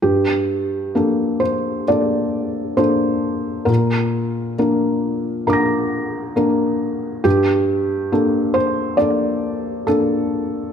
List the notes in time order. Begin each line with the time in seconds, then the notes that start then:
0.02 G2 G4
0.95 A#3 D4 A4
1.40 C5
1.88 A#3 D4 A4 D5
2.77 A#3 D4 A4 C5
3.65 A#2 A#4
4.59 A#3 D4 A#4
5.47 A#3 D4 A#4 A#5 D6
5.53 A#6
6.36 A#3 D4 A#4
7.24 G2 G4
8.12 A#3 D4 A4
8.54 C5
8.97 A#3 D4 A4 D5
9.87 A#3 D4 A4